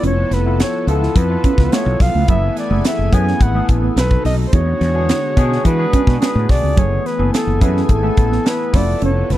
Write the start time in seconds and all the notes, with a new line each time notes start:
Already playing: F3 B3 E4 F4 A4
0.03 F1 C#4 C#5, closed hi-hat
0.31 F1 B4, muted clean electric guitar stroke, snare, closed hi-hat
0.45 B3 E4 F4 A4
0.59 F4 C#5, snare, closed hi-hat
0.74 muted clean electric guitar stroke
0.87 C#2 B3 E4 F4 A4, closed hi-hat
1.01 E4, snare
1.16 F2 B4, kick, closed hi-hat
1.30 B3 E4 F4 A4
1.44 C#4, kick, closed hi-hat
1.58 C#2 B3, kick, snare
1.72 A3 B3 E4 F4 A4 C#5, snare, closed hi-hat
1.86 B1
2.00 B1 F5, muted clean electric guitar stroke, kick, snare, open hi-hat
2.14 C#2 A3
2.27 F#1 E3 F#3 A3 B3 E4 G#4 A4 E5 G#5, kick, closed hi-hat
2.57 D5, muted clean electric guitar stroke, snare, closed hi-hat
2.70 F#1 A3 B3 E4 G#4 A4
2.85 E5, snare, closed hi-hat
2.99 F#1
3.12 F#2 B3 C#4 E4 G#4 B4 G#5, kick, closed hi-hat
3.27 C#4, snare
3.40 G#1 F#5, kick, closed hi-hat
3.55 A3 B3 E4 G#4 A4
3.69 A1, muted clean electric guitar stroke, kick, closed hi-hat
3.83 B3
3.96 B1 C3 C4 D#4 F#4 A4 B4, snare, closed hi-hat
4.11 kick
4.25 B1 D#4 D#5, snare, open hi-hat
4.47 C5
4.51 E2 D3 G#3 B3 D4 E4 F#4 G#4 C#5, kick, closed hi-hat
4.81 E2, muted clean electric guitar stroke, snare, closed hi-hat
4.94 B3 D4 F#4 G#4
5.09 E4, snare, closed hi-hat
5.24 muted clean electric guitar stroke
5.36 B2 B3 D4 F#4 G#4, kick, closed hi-hat
5.51 D4, snare
5.65 E3 B4, kick, closed hi-hat
5.78 B3 D4 F#4 G#4
5.93 C#4, kick, closed hi-hat
6.07 B2 B3, kick, snare
6.20 B3 C#4 D4 F#4 G#4 B4, snare, closed hi-hat
6.35 A2
6.49 B1 D5, muted clean electric guitar stroke, kick, snare, open hi-hat
6.62 C#2 B3
6.76 F#1 E3 F#3 A3 B3 E4 G#4 A4 C#5 G#5, kick, closed hi-hat
7.05 B4, muted clean electric guitar stroke, snare, closed hi-hat
7.19 F#1 B3 E4 G#4 A4
7.34 A4, snare, closed hi-hat
7.47 F#1
7.61 F#2 B3 C#4 E4 G#4 A4 B4, kick, closed hi-hat
7.75 C#4, snare
7.84 B4
7.89 G#1 A4, kick, closed hi-hat
8.03 A3 B3 E4 A4 G#5
8.17 A1, muted clean electric guitar stroke, kick, closed hi-hat
8.32 B3, snare
8.45 B3 E4 G#4 A4 B4, snare, closed hi-hat
8.72 F1 F3 B3 C#4 E4 F4 A4 D5, kick, snare, open hi-hat
9.02 F1 C#4 C#5, closed hi-hat
9.30 F1 B4, muted clean electric guitar stroke, snare, closed hi-hat